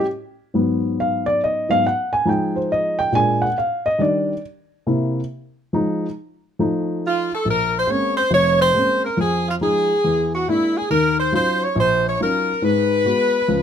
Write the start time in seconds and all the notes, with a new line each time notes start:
0.54 G#2 F#3 B3
1.00 F5
1.26 D5
1.44 D#5
1.69 G#2 F#3 B3 F5
1.87 F#5
2.13 G#5
2.25 F3 G#3 D#4 G5
2.56 C5
2.72 D#5
2.99 G5
3.12 A#2 G#3 D4 G#5
3.42 F#5
3.58 F5
3.86 D#5
3.98 D#3 G3 D4 D5
4.87 C3 A#3 E4
5.73 F3 G#3 D#4
6.59 F3 A3 D#4
7.07 F4
7.35 A4
7.45 A#1
7.50 A#4
7.78 C5
7.87 G#3 A#3 C4 C#4 C#5
8.17 C5
8.31 F1 F2 C#5
8.61 C5
8.74 G#3 A#3 C4 C#4
9.05 A#4
9.17 F2 F3 G#4
9.49 F4
9.61 F3 G#3 D#4 G#4
10.04 E2
10.35 F#4
10.48 G#3 A#3 D4 E4
10.77 G#4
10.90 D#2 D#3 A#4
11.20 C5
11.32 F#3 C#4 D#4 F4 C5
11.64 C#5
11.76 A#1 C5
12.08 C#5
12.20 F#3 C#4 D#4 F4 A#4
12.62 G#2 G#3 B4
13.05 G#3 B3 F#4
13.48 C#2 F3